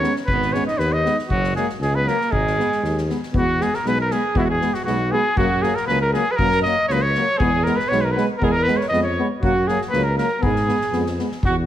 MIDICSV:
0, 0, Header, 1, 7, 480
1, 0, Start_track
1, 0, Tempo, 508906
1, 257, Time_signature, 2, 2, 24, 8
1, 6977, Tempo, 503356
1, 11043, End_track
2, 0, Start_track
2, 0, Title_t, "Trumpet"
2, 0, Program_c, 0, 56
2, 0, Note_on_c, 0, 73, 84
2, 135, Note_off_c, 0, 73, 0
2, 247, Note_on_c, 0, 71, 89
2, 498, Note_on_c, 0, 73, 79
2, 512, Note_off_c, 0, 71, 0
2, 622, Note_off_c, 0, 73, 0
2, 626, Note_on_c, 0, 75, 78
2, 736, Note_on_c, 0, 71, 90
2, 751, Note_off_c, 0, 75, 0
2, 873, Note_on_c, 0, 75, 86
2, 887, Note_off_c, 0, 71, 0
2, 1108, Note_off_c, 0, 75, 0
2, 1216, Note_on_c, 0, 66, 89
2, 1441, Note_off_c, 0, 66, 0
2, 1468, Note_on_c, 0, 68, 79
2, 1579, Note_off_c, 0, 68, 0
2, 1716, Note_on_c, 0, 68, 77
2, 1840, Note_on_c, 0, 71, 87
2, 1854, Note_off_c, 0, 68, 0
2, 1962, Note_on_c, 0, 70, 86
2, 1976, Note_off_c, 0, 71, 0
2, 2187, Note_on_c, 0, 68, 82
2, 2202, Note_off_c, 0, 70, 0
2, 2905, Note_off_c, 0, 68, 0
2, 3158, Note_on_c, 0, 66, 83
2, 3416, Note_on_c, 0, 68, 74
2, 3430, Note_off_c, 0, 66, 0
2, 3537, Note_on_c, 0, 70, 68
2, 3552, Note_off_c, 0, 68, 0
2, 3656, Note_on_c, 0, 71, 90
2, 3670, Note_off_c, 0, 70, 0
2, 3764, Note_off_c, 0, 71, 0
2, 3779, Note_on_c, 0, 70, 78
2, 3886, Note_on_c, 0, 68, 78
2, 3900, Note_off_c, 0, 70, 0
2, 4124, Note_on_c, 0, 66, 81
2, 4137, Note_on_c, 0, 64, 72
2, 4138, Note_off_c, 0, 68, 0
2, 4151, Note_off_c, 0, 66, 0
2, 4180, Note_on_c, 0, 66, 68
2, 4194, Note_off_c, 0, 64, 0
2, 4234, Note_off_c, 0, 66, 0
2, 4246, Note_on_c, 0, 68, 87
2, 4473, Note_on_c, 0, 66, 65
2, 4487, Note_off_c, 0, 68, 0
2, 4568, Note_off_c, 0, 66, 0
2, 4574, Note_on_c, 0, 66, 83
2, 4824, Note_on_c, 0, 68, 90
2, 4838, Note_off_c, 0, 66, 0
2, 5068, Note_on_c, 0, 66, 86
2, 5082, Note_off_c, 0, 68, 0
2, 5304, Note_on_c, 0, 68, 82
2, 5318, Note_off_c, 0, 66, 0
2, 5429, Note_on_c, 0, 70, 75
2, 5443, Note_off_c, 0, 68, 0
2, 5525, Note_off_c, 0, 70, 0
2, 5531, Note_on_c, 0, 71, 95
2, 5651, Note_off_c, 0, 71, 0
2, 5667, Note_on_c, 0, 70, 77
2, 5774, Note_off_c, 0, 70, 0
2, 5787, Note_on_c, 0, 68, 85
2, 5953, Note_on_c, 0, 71, 79
2, 5967, Note_off_c, 0, 68, 0
2, 6000, Note_on_c, 0, 70, 99
2, 6014, Note_off_c, 0, 71, 0
2, 6237, Note_off_c, 0, 70, 0
2, 6243, Note_on_c, 0, 75, 100
2, 6473, Note_off_c, 0, 75, 0
2, 6491, Note_on_c, 0, 73, 86
2, 6527, Note_on_c, 0, 71, 83
2, 6542, Note_off_c, 0, 73, 0
2, 6620, Note_on_c, 0, 73, 105
2, 6634, Note_off_c, 0, 71, 0
2, 6961, Note_on_c, 0, 68, 90
2, 6975, Note_off_c, 0, 73, 0
2, 7206, Note_on_c, 0, 70, 81
2, 7221, Note_off_c, 0, 68, 0
2, 7322, Note_on_c, 0, 71, 83
2, 7337, Note_off_c, 0, 70, 0
2, 7440, Note_on_c, 0, 73, 95
2, 7454, Note_off_c, 0, 71, 0
2, 7561, Note_on_c, 0, 71, 85
2, 7575, Note_off_c, 0, 73, 0
2, 7596, Note_on_c, 0, 70, 70
2, 7611, Note_off_c, 0, 71, 0
2, 7664, Note_on_c, 0, 71, 83
2, 7678, Note_off_c, 0, 70, 0
2, 7807, Note_off_c, 0, 71, 0
2, 7908, Note_on_c, 0, 70, 78
2, 7971, Note_on_c, 0, 68, 76
2, 7986, Note_off_c, 0, 70, 0
2, 8043, Note_on_c, 0, 70, 114
2, 8057, Note_off_c, 0, 68, 0
2, 8151, Note_on_c, 0, 71, 99
2, 8166, Note_off_c, 0, 70, 0
2, 8285, Note_on_c, 0, 73, 65
2, 8299, Note_off_c, 0, 71, 0
2, 8385, Note_off_c, 0, 73, 0
2, 8391, Note_on_c, 0, 75, 99
2, 8521, Note_off_c, 0, 75, 0
2, 8533, Note_on_c, 0, 73, 82
2, 8763, Note_off_c, 0, 73, 0
2, 8888, Note_on_c, 0, 66, 77
2, 9148, Note_on_c, 0, 68, 81
2, 9163, Note_off_c, 0, 66, 0
2, 9270, Note_off_c, 0, 68, 0
2, 9357, Note_on_c, 0, 71, 86
2, 9495, Note_on_c, 0, 70, 77
2, 9509, Note_off_c, 0, 71, 0
2, 9617, Note_off_c, 0, 70, 0
2, 9628, Note_on_c, 0, 70, 77
2, 9863, Note_on_c, 0, 68, 82
2, 9877, Note_off_c, 0, 70, 0
2, 10580, Note_off_c, 0, 68, 0
2, 10841, Note_on_c, 0, 66, 78
2, 10943, Note_off_c, 0, 66, 0
2, 11043, End_track
3, 0, Start_track
3, 0, Title_t, "Alto saxophone"
3, 0, Program_c, 1, 65
3, 0, Note_on_c, 1, 61, 61
3, 157, Note_off_c, 1, 61, 0
3, 297, Note_on_c, 1, 59, 91
3, 512, Note_on_c, 1, 61, 69
3, 526, Note_off_c, 1, 59, 0
3, 624, Note_off_c, 1, 61, 0
3, 630, Note_on_c, 1, 63, 55
3, 750, Note_on_c, 1, 59, 61
3, 764, Note_off_c, 1, 63, 0
3, 889, Note_on_c, 1, 63, 66
3, 903, Note_off_c, 1, 59, 0
3, 1116, Note_off_c, 1, 63, 0
3, 1238, Note_on_c, 1, 54, 92
3, 1453, Note_off_c, 1, 54, 0
3, 1466, Note_on_c, 1, 56, 58
3, 1578, Note_off_c, 1, 56, 0
3, 1717, Note_on_c, 1, 56, 65
3, 1844, Note_on_c, 1, 59, 61
3, 1858, Note_off_c, 1, 56, 0
3, 1964, Note_on_c, 1, 58, 70
3, 1978, Note_off_c, 1, 59, 0
3, 2179, Note_on_c, 1, 56, 91
3, 2193, Note_off_c, 1, 58, 0
3, 2901, Note_off_c, 1, 56, 0
3, 3175, Note_on_c, 1, 66, 79
3, 3406, Note_on_c, 1, 68, 64
3, 3420, Note_off_c, 1, 66, 0
3, 3527, Note_on_c, 1, 70, 53
3, 3541, Note_off_c, 1, 68, 0
3, 3649, Note_on_c, 1, 71, 71
3, 3663, Note_off_c, 1, 70, 0
3, 3760, Note_off_c, 1, 71, 0
3, 3769, Note_on_c, 1, 70, 60
3, 3892, Note_on_c, 1, 68, 72
3, 3906, Note_off_c, 1, 70, 0
3, 4135, Note_on_c, 1, 66, 77
3, 4147, Note_off_c, 1, 68, 0
3, 4178, Note_off_c, 1, 66, 0
3, 4178, Note_on_c, 1, 66, 88
3, 4230, Note_off_c, 1, 66, 0
3, 4236, Note_on_c, 1, 68, 70
3, 4480, Note_on_c, 1, 66, 51
3, 4494, Note_off_c, 1, 68, 0
3, 4589, Note_off_c, 1, 66, 0
3, 4595, Note_on_c, 1, 66, 71
3, 4843, Note_on_c, 1, 68, 80
3, 4857, Note_off_c, 1, 66, 0
3, 5075, Note_on_c, 1, 66, 105
3, 5089, Note_off_c, 1, 68, 0
3, 5303, Note_on_c, 1, 68, 74
3, 5318, Note_off_c, 1, 66, 0
3, 5417, Note_on_c, 1, 70, 65
3, 5431, Note_off_c, 1, 68, 0
3, 5537, Note_off_c, 1, 70, 0
3, 5545, Note_on_c, 1, 71, 85
3, 5658, Note_off_c, 1, 71, 0
3, 5667, Note_on_c, 1, 70, 66
3, 5767, Note_off_c, 1, 70, 0
3, 5773, Note_on_c, 1, 68, 79
3, 5957, Note_on_c, 1, 71, 68
3, 5971, Note_off_c, 1, 68, 0
3, 6019, Note_on_c, 1, 70, 105
3, 6034, Note_off_c, 1, 71, 0
3, 6248, Note_off_c, 1, 70, 0
3, 6254, Note_on_c, 1, 75, 77
3, 6479, Note_off_c, 1, 75, 0
3, 6500, Note_on_c, 1, 73, 71
3, 6558, Note_on_c, 1, 71, 58
3, 6572, Note_off_c, 1, 73, 0
3, 6636, Note_on_c, 1, 73, 88
3, 6650, Note_off_c, 1, 71, 0
3, 6977, Note_on_c, 1, 68, 99
3, 6992, Note_off_c, 1, 73, 0
3, 7231, Note_on_c, 1, 70, 76
3, 7245, Note_off_c, 1, 68, 0
3, 7356, Note_on_c, 1, 71, 62
3, 7370, Note_off_c, 1, 70, 0
3, 7479, Note_on_c, 1, 73, 72
3, 7494, Note_off_c, 1, 71, 0
3, 7594, Note_on_c, 1, 71, 64
3, 7608, Note_off_c, 1, 73, 0
3, 7655, Note_on_c, 1, 70, 53
3, 7669, Note_off_c, 1, 71, 0
3, 7720, Note_on_c, 1, 71, 64
3, 7734, Note_off_c, 1, 70, 0
3, 7835, Note_off_c, 1, 71, 0
3, 7966, Note_on_c, 1, 70, 88
3, 8019, Note_on_c, 1, 68, 85
3, 8033, Note_off_c, 1, 70, 0
3, 8091, Note_on_c, 1, 70, 99
3, 8105, Note_off_c, 1, 68, 0
3, 8198, Note_on_c, 1, 71, 79
3, 8212, Note_off_c, 1, 70, 0
3, 8342, Note_on_c, 1, 73, 55
3, 8356, Note_off_c, 1, 71, 0
3, 8430, Note_off_c, 1, 73, 0
3, 8435, Note_on_c, 1, 75, 73
3, 8545, Note_off_c, 1, 75, 0
3, 8567, Note_on_c, 1, 73, 73
3, 8781, Note_off_c, 1, 73, 0
3, 8924, Note_on_c, 1, 66, 95
3, 9148, Note_on_c, 1, 68, 71
3, 9163, Note_off_c, 1, 66, 0
3, 9270, Note_off_c, 1, 68, 0
3, 9387, Note_on_c, 1, 71, 75
3, 9503, Note_on_c, 1, 70, 58
3, 9518, Note_off_c, 1, 71, 0
3, 9612, Note_off_c, 1, 70, 0
3, 9617, Note_on_c, 1, 70, 63
3, 9864, Note_on_c, 1, 68, 77
3, 9878, Note_off_c, 1, 70, 0
3, 10580, Note_off_c, 1, 68, 0
3, 10838, Note_on_c, 1, 66, 88
3, 10941, Note_off_c, 1, 66, 0
3, 11043, End_track
4, 0, Start_track
4, 0, Title_t, "Euphonium"
4, 0, Program_c, 2, 58
4, 11, Note_on_c, 2, 59, 61
4, 108, Note_off_c, 2, 59, 0
4, 498, Note_on_c, 2, 59, 68
4, 594, Note_off_c, 2, 59, 0
4, 978, Note_on_c, 2, 59, 66
4, 1074, Note_off_c, 2, 59, 0
4, 1478, Note_on_c, 2, 58, 60
4, 1571, Note_off_c, 2, 58, 0
4, 1963, Note_on_c, 2, 58, 65
4, 2055, Note_off_c, 2, 58, 0
4, 2438, Note_on_c, 2, 59, 54
4, 2531, Note_off_c, 2, 59, 0
4, 2910, Note_on_c, 2, 59, 50
4, 3004, Note_off_c, 2, 59, 0
4, 3145, Note_on_c, 2, 59, 58
4, 3240, Note_off_c, 2, 59, 0
4, 3391, Note_on_c, 2, 59, 52
4, 3486, Note_off_c, 2, 59, 0
4, 3637, Note_on_c, 2, 59, 62
4, 3730, Note_off_c, 2, 59, 0
4, 3872, Note_on_c, 2, 59, 52
4, 3966, Note_off_c, 2, 59, 0
4, 4100, Note_on_c, 2, 59, 71
4, 4196, Note_off_c, 2, 59, 0
4, 4349, Note_on_c, 2, 59, 62
4, 4443, Note_off_c, 2, 59, 0
4, 4583, Note_on_c, 2, 59, 62
4, 4679, Note_off_c, 2, 59, 0
4, 4823, Note_on_c, 2, 59, 70
4, 4919, Note_off_c, 2, 59, 0
4, 5068, Note_on_c, 2, 58, 70
4, 5163, Note_off_c, 2, 58, 0
4, 5304, Note_on_c, 2, 58, 65
4, 5399, Note_off_c, 2, 58, 0
4, 5540, Note_on_c, 2, 58, 68
4, 5636, Note_off_c, 2, 58, 0
4, 5785, Note_on_c, 2, 58, 62
4, 5880, Note_off_c, 2, 58, 0
4, 6028, Note_on_c, 2, 58, 60
4, 6122, Note_off_c, 2, 58, 0
4, 6273, Note_on_c, 2, 58, 53
4, 6366, Note_off_c, 2, 58, 0
4, 6510, Note_on_c, 2, 58, 53
4, 6603, Note_off_c, 2, 58, 0
4, 6749, Note_on_c, 2, 58, 49
4, 6842, Note_off_c, 2, 58, 0
4, 6975, Note_on_c, 2, 59, 60
4, 7072, Note_off_c, 2, 59, 0
4, 7227, Note_on_c, 2, 59, 59
4, 7322, Note_off_c, 2, 59, 0
4, 7454, Note_on_c, 2, 59, 60
4, 7552, Note_off_c, 2, 59, 0
4, 7699, Note_on_c, 2, 59, 67
4, 7796, Note_off_c, 2, 59, 0
4, 7937, Note_on_c, 2, 59, 68
4, 8034, Note_off_c, 2, 59, 0
4, 8179, Note_on_c, 2, 59, 66
4, 8276, Note_off_c, 2, 59, 0
4, 8425, Note_on_c, 2, 59, 62
4, 8521, Note_off_c, 2, 59, 0
4, 8680, Note_on_c, 2, 59, 69
4, 8773, Note_off_c, 2, 59, 0
4, 8906, Note_on_c, 2, 58, 65
4, 9001, Note_off_c, 2, 58, 0
4, 9150, Note_on_c, 2, 58, 61
4, 9245, Note_off_c, 2, 58, 0
4, 9376, Note_on_c, 2, 58, 67
4, 9473, Note_off_c, 2, 58, 0
4, 9620, Note_on_c, 2, 58, 62
4, 9716, Note_off_c, 2, 58, 0
4, 9845, Note_on_c, 2, 59, 72
4, 9944, Note_off_c, 2, 59, 0
4, 10096, Note_on_c, 2, 59, 60
4, 10192, Note_off_c, 2, 59, 0
4, 10344, Note_on_c, 2, 59, 60
4, 10439, Note_off_c, 2, 59, 0
4, 10575, Note_on_c, 2, 59, 51
4, 10672, Note_off_c, 2, 59, 0
4, 11043, End_track
5, 0, Start_track
5, 0, Title_t, "Euphonium"
5, 0, Program_c, 3, 58
5, 23, Note_on_c, 3, 56, 57
5, 118, Note_off_c, 3, 56, 0
5, 511, Note_on_c, 3, 56, 64
5, 604, Note_off_c, 3, 56, 0
5, 987, Note_on_c, 3, 56, 57
5, 1081, Note_off_c, 3, 56, 0
5, 1469, Note_on_c, 3, 54, 57
5, 1563, Note_off_c, 3, 54, 0
5, 1936, Note_on_c, 3, 54, 54
5, 2033, Note_off_c, 3, 54, 0
5, 2422, Note_on_c, 3, 56, 60
5, 2518, Note_off_c, 3, 56, 0
5, 2901, Note_on_c, 3, 56, 49
5, 2997, Note_off_c, 3, 56, 0
5, 3144, Note_on_c, 3, 56, 48
5, 3240, Note_off_c, 3, 56, 0
5, 3384, Note_on_c, 3, 56, 57
5, 3479, Note_off_c, 3, 56, 0
5, 3630, Note_on_c, 3, 56, 59
5, 3725, Note_off_c, 3, 56, 0
5, 3871, Note_on_c, 3, 56, 54
5, 3965, Note_off_c, 3, 56, 0
5, 4112, Note_on_c, 3, 56, 70
5, 4206, Note_off_c, 3, 56, 0
5, 4344, Note_on_c, 3, 56, 65
5, 4440, Note_off_c, 3, 56, 0
5, 4582, Note_on_c, 3, 56, 66
5, 4678, Note_off_c, 3, 56, 0
5, 4828, Note_on_c, 3, 56, 68
5, 4923, Note_off_c, 3, 56, 0
5, 5069, Note_on_c, 3, 54, 71
5, 5164, Note_off_c, 3, 54, 0
5, 5312, Note_on_c, 3, 54, 71
5, 5406, Note_off_c, 3, 54, 0
5, 5545, Note_on_c, 3, 54, 65
5, 5640, Note_off_c, 3, 54, 0
5, 5789, Note_on_c, 3, 54, 54
5, 5883, Note_off_c, 3, 54, 0
5, 6029, Note_on_c, 3, 54, 63
5, 6123, Note_off_c, 3, 54, 0
5, 6272, Note_on_c, 3, 54, 60
5, 6365, Note_off_c, 3, 54, 0
5, 6513, Note_on_c, 3, 54, 55
5, 6605, Note_off_c, 3, 54, 0
5, 6754, Note_on_c, 3, 54, 49
5, 6846, Note_off_c, 3, 54, 0
5, 6992, Note_on_c, 3, 56, 54
5, 7086, Note_off_c, 3, 56, 0
5, 7228, Note_on_c, 3, 56, 55
5, 7323, Note_off_c, 3, 56, 0
5, 7473, Note_on_c, 3, 56, 56
5, 7567, Note_off_c, 3, 56, 0
5, 7716, Note_on_c, 3, 56, 60
5, 7810, Note_off_c, 3, 56, 0
5, 7950, Note_on_c, 3, 56, 68
5, 8045, Note_off_c, 3, 56, 0
5, 8202, Note_on_c, 3, 56, 68
5, 8294, Note_off_c, 3, 56, 0
5, 8432, Note_on_c, 3, 56, 60
5, 8527, Note_off_c, 3, 56, 0
5, 8672, Note_on_c, 3, 56, 59
5, 8766, Note_off_c, 3, 56, 0
5, 8907, Note_on_c, 3, 54, 64
5, 9002, Note_off_c, 3, 54, 0
5, 9161, Note_on_c, 3, 54, 73
5, 9253, Note_off_c, 3, 54, 0
5, 9396, Note_on_c, 3, 54, 68
5, 9490, Note_off_c, 3, 54, 0
5, 9640, Note_on_c, 3, 54, 60
5, 9733, Note_off_c, 3, 54, 0
5, 9883, Note_on_c, 3, 56, 63
5, 9975, Note_off_c, 3, 56, 0
5, 10113, Note_on_c, 3, 56, 53
5, 10207, Note_off_c, 3, 56, 0
5, 10360, Note_on_c, 3, 56, 55
5, 10451, Note_off_c, 3, 56, 0
5, 10593, Note_on_c, 3, 56, 52
5, 10686, Note_off_c, 3, 56, 0
5, 11043, End_track
6, 0, Start_track
6, 0, Title_t, "Tuba"
6, 0, Program_c, 4, 58
6, 262, Note_on_c, 4, 32, 78
6, 525, Note_off_c, 4, 32, 0
6, 739, Note_on_c, 4, 39, 98
6, 1003, Note_off_c, 4, 39, 0
6, 1220, Note_on_c, 4, 30, 81
6, 1484, Note_off_c, 4, 30, 0
6, 1691, Note_on_c, 4, 37, 90
6, 1958, Note_off_c, 4, 37, 0
6, 2186, Note_on_c, 4, 32, 74
6, 2449, Note_off_c, 4, 32, 0
6, 2664, Note_on_c, 4, 39, 79
6, 2928, Note_off_c, 4, 39, 0
6, 3139, Note_on_c, 4, 40, 71
6, 3404, Note_off_c, 4, 40, 0
6, 3622, Note_on_c, 4, 35, 73
6, 3887, Note_off_c, 4, 35, 0
6, 4098, Note_on_c, 4, 40, 74
6, 4363, Note_off_c, 4, 40, 0
6, 4571, Note_on_c, 4, 35, 81
6, 4838, Note_off_c, 4, 35, 0
6, 5062, Note_on_c, 4, 42, 85
6, 5326, Note_off_c, 4, 42, 0
6, 5540, Note_on_c, 4, 37, 77
6, 5804, Note_off_c, 4, 37, 0
6, 6025, Note_on_c, 4, 42, 79
6, 6287, Note_off_c, 4, 42, 0
6, 6500, Note_on_c, 4, 37, 87
6, 6762, Note_off_c, 4, 37, 0
6, 6990, Note_on_c, 4, 40, 89
6, 7252, Note_off_c, 4, 40, 0
6, 7468, Note_on_c, 4, 35, 87
6, 7731, Note_off_c, 4, 35, 0
6, 7948, Note_on_c, 4, 40, 81
6, 8211, Note_off_c, 4, 40, 0
6, 8420, Note_on_c, 4, 41, 86
6, 8685, Note_off_c, 4, 41, 0
6, 8904, Note_on_c, 4, 42, 72
6, 9168, Note_off_c, 4, 42, 0
6, 9386, Note_on_c, 4, 37, 91
6, 9649, Note_off_c, 4, 37, 0
6, 9861, Note_on_c, 4, 44, 82
6, 10124, Note_off_c, 4, 44, 0
6, 10338, Note_on_c, 4, 41, 85
6, 10601, Note_off_c, 4, 41, 0
6, 10825, Note_on_c, 4, 40, 87
6, 11043, Note_off_c, 4, 40, 0
6, 11043, End_track
7, 0, Start_track
7, 0, Title_t, "Drums"
7, 32, Note_on_c, 9, 38, 27
7, 126, Note_off_c, 9, 38, 0
7, 149, Note_on_c, 9, 38, 22
7, 243, Note_off_c, 9, 38, 0
7, 263, Note_on_c, 9, 36, 73
7, 357, Note_off_c, 9, 36, 0
7, 394, Note_on_c, 9, 38, 23
7, 488, Note_off_c, 9, 38, 0
7, 510, Note_on_c, 9, 38, 24
7, 605, Note_off_c, 9, 38, 0
7, 636, Note_on_c, 9, 38, 22
7, 730, Note_off_c, 9, 38, 0
7, 746, Note_on_c, 9, 38, 30
7, 841, Note_off_c, 9, 38, 0
7, 994, Note_on_c, 9, 38, 29
7, 1088, Note_off_c, 9, 38, 0
7, 1116, Note_on_c, 9, 38, 24
7, 1210, Note_off_c, 9, 38, 0
7, 1228, Note_on_c, 9, 36, 71
7, 1322, Note_off_c, 9, 36, 0
7, 1354, Note_on_c, 9, 38, 26
7, 1448, Note_off_c, 9, 38, 0
7, 1470, Note_on_c, 9, 38, 26
7, 1564, Note_off_c, 9, 38, 0
7, 1596, Note_on_c, 9, 38, 23
7, 1690, Note_off_c, 9, 38, 0
7, 1712, Note_on_c, 9, 38, 26
7, 1807, Note_off_c, 9, 38, 0
7, 1954, Note_on_c, 9, 38, 29
7, 2049, Note_off_c, 9, 38, 0
7, 2082, Note_on_c, 9, 38, 21
7, 2176, Note_off_c, 9, 38, 0
7, 2191, Note_on_c, 9, 36, 62
7, 2285, Note_off_c, 9, 36, 0
7, 2330, Note_on_c, 9, 38, 22
7, 2424, Note_off_c, 9, 38, 0
7, 2444, Note_on_c, 9, 38, 22
7, 2538, Note_off_c, 9, 38, 0
7, 2562, Note_on_c, 9, 38, 19
7, 2657, Note_off_c, 9, 38, 0
7, 2680, Note_on_c, 9, 38, 26
7, 2775, Note_off_c, 9, 38, 0
7, 2804, Note_on_c, 9, 38, 27
7, 2898, Note_off_c, 9, 38, 0
7, 2917, Note_on_c, 9, 38, 27
7, 3012, Note_off_c, 9, 38, 0
7, 3043, Note_on_c, 9, 38, 24
7, 3137, Note_off_c, 9, 38, 0
7, 3150, Note_on_c, 9, 36, 80
7, 3245, Note_off_c, 9, 36, 0
7, 3401, Note_on_c, 9, 38, 28
7, 3495, Note_off_c, 9, 38, 0
7, 3521, Note_on_c, 9, 38, 24
7, 3616, Note_off_c, 9, 38, 0
7, 3636, Note_on_c, 9, 38, 28
7, 3731, Note_off_c, 9, 38, 0
7, 3871, Note_on_c, 9, 38, 30
7, 3965, Note_off_c, 9, 38, 0
7, 4105, Note_on_c, 9, 36, 83
7, 4200, Note_off_c, 9, 36, 0
7, 4349, Note_on_c, 9, 38, 23
7, 4443, Note_off_c, 9, 38, 0
7, 4469, Note_on_c, 9, 38, 26
7, 4564, Note_off_c, 9, 38, 0
7, 4590, Note_on_c, 9, 38, 26
7, 4684, Note_off_c, 9, 38, 0
7, 5065, Note_on_c, 9, 36, 84
7, 5159, Note_off_c, 9, 36, 0
7, 5310, Note_on_c, 9, 38, 24
7, 5405, Note_off_c, 9, 38, 0
7, 5437, Note_on_c, 9, 38, 22
7, 5532, Note_off_c, 9, 38, 0
7, 5550, Note_on_c, 9, 38, 25
7, 5644, Note_off_c, 9, 38, 0
7, 5787, Note_on_c, 9, 38, 26
7, 5881, Note_off_c, 9, 38, 0
7, 6023, Note_on_c, 9, 36, 81
7, 6117, Note_off_c, 9, 36, 0
7, 6145, Note_on_c, 9, 38, 26
7, 6239, Note_off_c, 9, 38, 0
7, 6265, Note_on_c, 9, 38, 22
7, 6359, Note_off_c, 9, 38, 0
7, 6503, Note_on_c, 9, 38, 27
7, 6598, Note_off_c, 9, 38, 0
7, 6741, Note_on_c, 9, 38, 26
7, 6835, Note_off_c, 9, 38, 0
7, 6980, Note_on_c, 9, 36, 92
7, 7075, Note_off_c, 9, 36, 0
7, 7224, Note_on_c, 9, 38, 25
7, 7320, Note_off_c, 9, 38, 0
7, 7351, Note_on_c, 9, 38, 24
7, 7447, Note_off_c, 9, 38, 0
7, 7472, Note_on_c, 9, 38, 28
7, 7567, Note_off_c, 9, 38, 0
7, 7716, Note_on_c, 9, 38, 22
7, 7811, Note_off_c, 9, 38, 0
7, 7949, Note_on_c, 9, 36, 68
7, 8044, Note_off_c, 9, 36, 0
7, 8195, Note_on_c, 9, 38, 23
7, 8290, Note_off_c, 9, 38, 0
7, 8320, Note_on_c, 9, 38, 21
7, 8415, Note_off_c, 9, 38, 0
7, 8438, Note_on_c, 9, 38, 24
7, 8533, Note_off_c, 9, 38, 0
7, 8912, Note_on_c, 9, 36, 78
7, 9008, Note_off_c, 9, 36, 0
7, 9154, Note_on_c, 9, 38, 21
7, 9250, Note_off_c, 9, 38, 0
7, 9280, Note_on_c, 9, 38, 24
7, 9375, Note_off_c, 9, 38, 0
7, 9393, Note_on_c, 9, 38, 26
7, 9488, Note_off_c, 9, 38, 0
7, 9629, Note_on_c, 9, 38, 24
7, 9724, Note_off_c, 9, 38, 0
7, 9866, Note_on_c, 9, 36, 79
7, 9962, Note_off_c, 9, 36, 0
7, 9990, Note_on_c, 9, 38, 23
7, 10085, Note_off_c, 9, 38, 0
7, 10110, Note_on_c, 9, 38, 24
7, 10206, Note_off_c, 9, 38, 0
7, 10231, Note_on_c, 9, 38, 28
7, 10326, Note_off_c, 9, 38, 0
7, 10340, Note_on_c, 9, 38, 29
7, 10435, Note_off_c, 9, 38, 0
7, 10470, Note_on_c, 9, 38, 30
7, 10566, Note_off_c, 9, 38, 0
7, 10590, Note_on_c, 9, 38, 28
7, 10685, Note_off_c, 9, 38, 0
7, 10711, Note_on_c, 9, 38, 21
7, 10806, Note_off_c, 9, 38, 0
7, 10822, Note_on_c, 9, 36, 84
7, 10917, Note_off_c, 9, 36, 0
7, 11043, End_track
0, 0, End_of_file